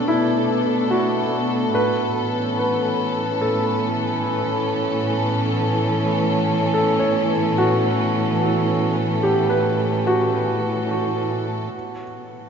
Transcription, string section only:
0, 0, Header, 1, 2, 480
1, 0, Start_track
1, 0, Tempo, 833333
1, 1001, Time_signature, 3, 2, 24, 8
1, 7196, End_track
2, 0, Start_track
2, 0, Title_t, "String section"
2, 0, Program_c, 0, 48
2, 0, Note_on_c, 0, 47, 77
2, 0, Note_on_c, 0, 57, 82
2, 0, Note_on_c, 0, 62, 85
2, 0, Note_on_c, 0, 69, 67
2, 995, Note_on_c, 0, 45, 74
2, 1001, Note_off_c, 0, 57, 0
2, 1006, Note_off_c, 0, 47, 0
2, 1008, Note_off_c, 0, 62, 0
2, 1243, Note_on_c, 0, 52, 70
2, 1323, Note_on_c, 0, 61, 70
2, 6754, Note_on_c, 0, 47, 70
2, 6758, Note_off_c, 0, 45, 0
2, 6762, Note_off_c, 0, 52, 0
2, 6762, Note_off_c, 0, 61, 0
2, 7072, Note_on_c, 0, 54, 63
2, 7196, Note_off_c, 0, 47, 0
2, 7196, Note_off_c, 0, 54, 0
2, 7196, Note_off_c, 0, 69, 0
2, 7196, End_track
0, 0, End_of_file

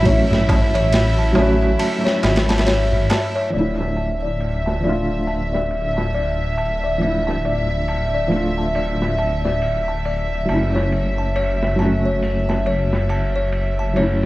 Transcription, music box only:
0, 0, Header, 1, 2, 480
1, 0, Start_track
1, 0, Tempo, 869565
1, 30, Time_signature, 4, 2, 24, 8
1, 7870, End_track
2, 0, Start_track
2, 0, Title_t, "Music box"
2, 0, Program_c, 0, 10
2, 31, Note_on_c, 0, 73, 82
2, 261, Note_off_c, 0, 73, 0
2, 274, Note_on_c, 0, 81, 72
2, 401, Note_off_c, 0, 81, 0
2, 413, Note_on_c, 0, 73, 81
2, 505, Note_off_c, 0, 73, 0
2, 655, Note_on_c, 0, 81, 85
2, 746, Note_off_c, 0, 81, 0
2, 750, Note_on_c, 0, 73, 73
2, 981, Note_off_c, 0, 73, 0
2, 990, Note_on_c, 0, 81, 78
2, 1119, Note_off_c, 0, 81, 0
2, 1134, Note_on_c, 0, 73, 77
2, 1226, Note_off_c, 0, 73, 0
2, 1374, Note_on_c, 0, 81, 76
2, 1466, Note_off_c, 0, 81, 0
2, 1470, Note_on_c, 0, 73, 83
2, 1700, Note_off_c, 0, 73, 0
2, 1712, Note_on_c, 0, 81, 73
2, 1840, Note_off_c, 0, 81, 0
2, 1852, Note_on_c, 0, 73, 81
2, 1945, Note_off_c, 0, 73, 0
2, 1947, Note_on_c, 0, 74, 69
2, 2179, Note_off_c, 0, 74, 0
2, 2190, Note_on_c, 0, 81, 62
2, 2319, Note_off_c, 0, 81, 0
2, 2333, Note_on_c, 0, 74, 64
2, 2425, Note_off_c, 0, 74, 0
2, 2573, Note_on_c, 0, 81, 68
2, 2665, Note_off_c, 0, 81, 0
2, 2671, Note_on_c, 0, 74, 59
2, 2901, Note_off_c, 0, 74, 0
2, 2911, Note_on_c, 0, 81, 62
2, 3039, Note_off_c, 0, 81, 0
2, 3054, Note_on_c, 0, 74, 60
2, 3146, Note_off_c, 0, 74, 0
2, 3294, Note_on_c, 0, 81, 62
2, 3386, Note_off_c, 0, 81, 0
2, 3391, Note_on_c, 0, 74, 68
2, 3621, Note_off_c, 0, 74, 0
2, 3628, Note_on_c, 0, 81, 59
2, 3758, Note_off_c, 0, 81, 0
2, 3773, Note_on_c, 0, 74, 70
2, 3865, Note_off_c, 0, 74, 0
2, 4012, Note_on_c, 0, 81, 63
2, 4105, Note_off_c, 0, 81, 0
2, 4112, Note_on_c, 0, 74, 65
2, 4341, Note_off_c, 0, 74, 0
2, 4352, Note_on_c, 0, 81, 65
2, 4480, Note_off_c, 0, 81, 0
2, 4495, Note_on_c, 0, 74, 70
2, 4586, Note_off_c, 0, 74, 0
2, 4735, Note_on_c, 0, 81, 72
2, 4826, Note_off_c, 0, 81, 0
2, 4833, Note_on_c, 0, 74, 70
2, 5062, Note_off_c, 0, 74, 0
2, 5072, Note_on_c, 0, 81, 70
2, 5200, Note_off_c, 0, 81, 0
2, 5215, Note_on_c, 0, 74, 66
2, 5306, Note_off_c, 0, 74, 0
2, 5454, Note_on_c, 0, 81, 65
2, 5546, Note_off_c, 0, 81, 0
2, 5551, Note_on_c, 0, 74, 65
2, 5781, Note_off_c, 0, 74, 0
2, 5792, Note_on_c, 0, 81, 69
2, 5920, Note_off_c, 0, 81, 0
2, 5933, Note_on_c, 0, 73, 62
2, 6025, Note_off_c, 0, 73, 0
2, 6173, Note_on_c, 0, 81, 67
2, 6265, Note_off_c, 0, 81, 0
2, 6270, Note_on_c, 0, 73, 70
2, 6501, Note_off_c, 0, 73, 0
2, 6509, Note_on_c, 0, 81, 65
2, 6638, Note_off_c, 0, 81, 0
2, 6655, Note_on_c, 0, 73, 67
2, 6746, Note_off_c, 0, 73, 0
2, 6894, Note_on_c, 0, 81, 64
2, 6986, Note_off_c, 0, 81, 0
2, 6992, Note_on_c, 0, 73, 72
2, 7221, Note_off_c, 0, 73, 0
2, 7231, Note_on_c, 0, 81, 77
2, 7359, Note_off_c, 0, 81, 0
2, 7374, Note_on_c, 0, 73, 68
2, 7466, Note_off_c, 0, 73, 0
2, 7614, Note_on_c, 0, 81, 69
2, 7706, Note_off_c, 0, 81, 0
2, 7711, Note_on_c, 0, 73, 70
2, 7870, Note_off_c, 0, 73, 0
2, 7870, End_track
0, 0, End_of_file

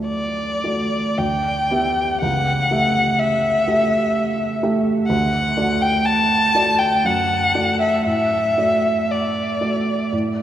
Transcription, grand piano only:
0, 0, Header, 1, 2, 480
1, 0, Start_track
1, 0, Key_signature, 2, "major"
1, 0, Tempo, 1092896
1, 525, Tempo, 1032702
1, 1005, Time_signature, 3, 2, 24, 8
1, 1005, Tempo, 963082
1, 3405, Tempo, 1029160
1, 4982, End_track
2, 0, Start_track
2, 0, Title_t, "Grand piano"
2, 0, Program_c, 0, 0
2, 0, Control_c, 0, 64, 127
2, 0, Note_on_c, 0, 38, 38
2, 0, Note_on_c, 0, 57, 25
2, 0, Note_on_c, 0, 66, 23
2, 0, Note_on_c, 0, 74, 26
2, 265, Note_off_c, 0, 57, 0
2, 265, Note_off_c, 0, 66, 0
2, 266, Note_off_c, 0, 74, 0
2, 281, Note_on_c, 0, 57, 25
2, 283, Note_on_c, 0, 66, 24
2, 286, Note_on_c, 0, 74, 25
2, 506, Note_off_c, 0, 57, 0
2, 508, Note_off_c, 0, 66, 0
2, 509, Note_off_c, 0, 74, 0
2, 518, Note_off_c, 0, 38, 0
2, 518, Note_on_c, 0, 38, 37
2, 533, Control_c, 0, 64, 0
2, 616, Control_c, 0, 64, 127
2, 758, Note_off_c, 0, 38, 0
2, 764, Note_on_c, 0, 59, 29
2, 768, Note_on_c, 0, 67, 32
2, 771, Note_on_c, 0, 76, 30
2, 984, Note_off_c, 0, 59, 0
2, 985, Note_off_c, 0, 67, 0
2, 987, Note_off_c, 0, 76, 0
2, 1002, Note_on_c, 0, 37, 44
2, 1013, Control_c, 0, 64, 0
2, 1100, Control_c, 0, 64, 127
2, 1242, Note_off_c, 0, 37, 0
2, 1245, Note_on_c, 0, 57, 29
2, 1249, Note_on_c, 0, 67, 28
2, 1251, Note_on_c, 0, 76, 34
2, 1706, Note_off_c, 0, 57, 0
2, 1707, Note_off_c, 0, 67, 0
2, 1709, Note_off_c, 0, 76, 0
2, 1727, Note_on_c, 0, 57, 30
2, 1728, Note_on_c, 0, 67, 31
2, 1732, Note_on_c, 0, 76, 32
2, 2181, Note_off_c, 0, 57, 0
2, 2182, Note_off_c, 0, 67, 0
2, 2184, Note_off_c, 0, 76, 0
2, 2202, Note_on_c, 0, 57, 38
2, 2203, Note_on_c, 0, 67, 35
2, 2205, Note_on_c, 0, 76, 40
2, 2417, Note_off_c, 0, 57, 0
2, 2417, Note_off_c, 0, 67, 0
2, 2418, Note_off_c, 0, 76, 0
2, 2434, Note_on_c, 0, 38, 52
2, 2446, Control_c, 0, 64, 0
2, 2529, Control_c, 0, 64, 127
2, 2666, Note_off_c, 0, 38, 0
2, 2671, Note_on_c, 0, 66, 33
2, 2672, Note_on_c, 0, 57, 36
2, 2674, Note_on_c, 0, 74, 35
2, 3137, Note_off_c, 0, 57, 0
2, 3137, Note_off_c, 0, 66, 0
2, 3138, Note_off_c, 0, 74, 0
2, 3158, Note_on_c, 0, 57, 34
2, 3159, Note_on_c, 0, 66, 30
2, 3163, Note_on_c, 0, 74, 38
2, 3384, Note_off_c, 0, 57, 0
2, 3385, Note_off_c, 0, 66, 0
2, 3387, Note_off_c, 0, 74, 0
2, 3404, Note_on_c, 0, 42, 45
2, 3412, Control_c, 0, 64, 0
2, 3486, Control_c, 0, 64, 127
2, 3633, Note_off_c, 0, 42, 0
2, 3641, Note_on_c, 0, 57, 32
2, 3641, Note_on_c, 0, 66, 32
2, 3642, Note_on_c, 0, 74, 34
2, 3861, Note_off_c, 0, 66, 0
2, 3862, Note_off_c, 0, 57, 0
2, 3862, Note_off_c, 0, 74, 0
2, 3880, Note_on_c, 0, 45, 38
2, 3887, Control_c, 0, 64, 0
2, 3955, Control_c, 0, 64, 127
2, 4114, Note_off_c, 0, 45, 0
2, 4121, Note_on_c, 0, 57, 26
2, 4125, Note_on_c, 0, 66, 27
2, 4125, Note_on_c, 0, 74, 31
2, 4583, Note_off_c, 0, 57, 0
2, 4584, Note_off_c, 0, 74, 0
2, 4585, Note_off_c, 0, 66, 0
2, 4602, Note_on_c, 0, 57, 27
2, 4604, Note_on_c, 0, 66, 23
2, 4606, Note_on_c, 0, 74, 29
2, 4824, Note_off_c, 0, 57, 0
2, 4825, Note_off_c, 0, 66, 0
2, 4827, Note_off_c, 0, 74, 0
2, 4843, Note_on_c, 0, 45, 37
2, 4852, Control_c, 0, 64, 0
2, 4928, Control_c, 0, 64, 127
2, 4982, Note_off_c, 0, 45, 0
2, 4982, End_track
0, 0, End_of_file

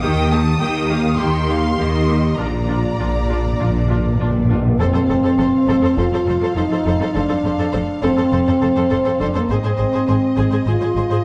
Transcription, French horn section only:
0, 0, Header, 1, 2, 480
1, 0, Start_track
1, 0, Tempo, 596421
1, 17, Time_signature, 4, 2, 24, 8
1, 3857, Tempo, 586510
1, 9137, End_track
2, 0, Start_track
2, 0, Title_t, "French horn section"
2, 0, Program_c, 0, 60
2, 19, Note_on_c, 0, 67, 59
2, 21, Note_on_c, 0, 58, 56
2, 1890, Note_off_c, 0, 67, 0
2, 1891, Note_off_c, 0, 58, 0
2, 1918, Note_on_c, 0, 62, 43
2, 1921, Note_on_c, 0, 65, 45
2, 3498, Note_off_c, 0, 62, 0
2, 3498, Note_off_c, 0, 65, 0
2, 3635, Note_on_c, 0, 62, 55
2, 3738, Note_off_c, 0, 62, 0
2, 3756, Note_on_c, 0, 58, 62
2, 3857, Note_on_c, 0, 60, 81
2, 3864, Note_off_c, 0, 58, 0
2, 4822, Note_off_c, 0, 60, 0
2, 4828, Note_on_c, 0, 65, 69
2, 5307, Note_off_c, 0, 65, 0
2, 5309, Note_on_c, 0, 63, 76
2, 5778, Note_off_c, 0, 63, 0
2, 5783, Note_on_c, 0, 62, 70
2, 6488, Note_off_c, 0, 62, 0
2, 6502, Note_on_c, 0, 60, 79
2, 7460, Note_off_c, 0, 60, 0
2, 7464, Note_on_c, 0, 62, 67
2, 7582, Note_off_c, 0, 62, 0
2, 7600, Note_on_c, 0, 58, 64
2, 7710, Note_off_c, 0, 58, 0
2, 7715, Note_on_c, 0, 60, 61
2, 8666, Note_off_c, 0, 60, 0
2, 8671, Note_on_c, 0, 65, 75
2, 9132, Note_off_c, 0, 65, 0
2, 9137, End_track
0, 0, End_of_file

